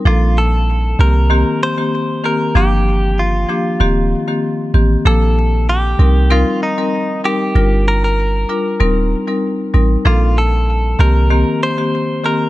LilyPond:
<<
  \new Staff \with { instrumentName = "Clean electric guitar" } { \time 4/4 \key c \dorian \tempo 4 = 96 f'8 a'4 bes'4 c''4 bes'8 | g'4 f'2~ f'8 r8 | a'4 g'4 f'8 ees'4 g'8~ | g'8 bes'16 bes'2 r4 r16 |
f'8 a'4 bes'4 c''4 bes'8 | }
  \new Staff \with { instrumentName = "Marimba" } { \time 4/4 \key c \dorian <f bes d' a'>4 r8 <ees bes c' g'>16 r16 <ees bes c' g'>8. <ees bes c' g'>16 r8 <ees bes c' g'>16 r16 | <f bes d' g'>4 r8 <f bes d' g'>16 r16 <ees bes c' g'>8. <ees bes c' g'>16 r8 <ees bes c' g'>16 r16 | <f bes d' a'>4 r8 <g c' ees' bes'>16 r16 <g c' ees' bes'>8. <g c' ees' bes'>16 r8 <g c' ees' bes'>16 r16 | <g d' f' bes'>4 r8 <g d' f' bes'>16 r16 <g c' ees' bes'>8. <g c' ees' bes'>16 r8 <g c' ees' bes'>16 r16 |
<f bes d' a'>4 r8 <ees bes c' g'>16 r16 <ees bes c' g'>8. <ees bes c' g'>16 r8 <ees bes c' g'>16 r16 | }
  \new Staff \with { instrumentName = "808-style bass" } { \clef bass \time 4/4 \key c \dorian bes,,4. c,4 r4. | g,,4. r8 ees,,8. r8. a,,8 | bes,,4. c,4 r4. | g,,4. r8 ees,,8. r8. a,,8 |
bes,,4. c,4 r4. | }
>>